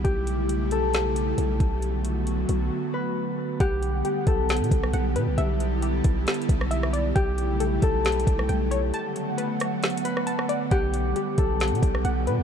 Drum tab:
HH |x-----x-----x-----x-----x-----x-----x-----x-----|x-----x-----x-----x-----------------------------|x-----x-----x-----x-----x-x-x-x-----x-----x-----|x-----x-----x-----x-----x-x-x-x-----x-----x-----|
SD |------------------------o-----------------------|------------------------------------------------|------------------------o--------r--------------|------------------------o--------r-----r--------|
BD |o-----------------------------------------o-----|------------------------------------------------|o-----------------o-----------o-----------------|------------------o-----------o-----------------|

HH |x-----x-----x-----x-----x-x-x-x-----x-----x-----|x-----x-----x-----x-----x-x-x-x-----x-----x-----|x-----x-----x-----x-----x-x-x-x-----x-----x-----|
SD |------------------------o--------r--------------|------------------r-----o--------r-----r--------|------------------------o--------r--------------|
BD |o-----------------o-----------o-----------------|------------------------------------------------|o-----------------o-----------o-----------------|